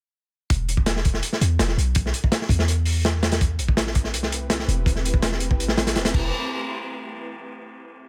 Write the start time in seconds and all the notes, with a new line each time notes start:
0.50 E1, kick, closed hi-hat
0.69 closed hi-hat
0.77 kick
0.86 snare, closed hi-hat
0.96 snare
1.05 kick, closed hi-hat
1.14 snare
1.23 closed hi-hat
1.33 snare
1.41 E2, closed hi-hat
1.59 E1, snare, closed hi-hat
1.68 snare
1.77 B1, closed hi-hat
1.95 kick, closed hi-hat
2.06 snare
2.14 closed hi-hat
2.24 kick
2.32 snare, closed hi-hat
2.42 snare
2.49 E2, kick, closed hi-hat
2.59 snare
2.68 closed hi-hat
2.85 open hi-hat
3.05 snare, closed hi-hat
3.23 snare, closed hi-hat
3.32 snare, closed hi-hat
3.41 kick, closed hi-hat
3.59 A1, closed hi-hat
3.68 kick
3.77 snare, closed hi-hat
3.87 snare
3.95 A3 C4 E4 G4 B4, kick, closed hi-hat
4.04 snare
4.14 C2, closed hi-hat
4.23 snare
4.32 closed hi-hat
4.50 snare, closed hi-hat
4.59 snare
4.68 E1, closed hi-hat
4.86 kick, closed hi-hat
4.96 snare
5.05 closed hi-hat
5.14 kick
5.22 snare, closed hi-hat
5.32 snare
5.40 closed hi-hat
5.51 kick
5.59 A1, closed hi-hat
5.68 snare
5.78 snare, closed hi-hat
5.87 snare, closed hi-hat
5.95 E1, snare, closed hi-hat
6.05 snare, closed hi-hat
6.14 E1, kick, crash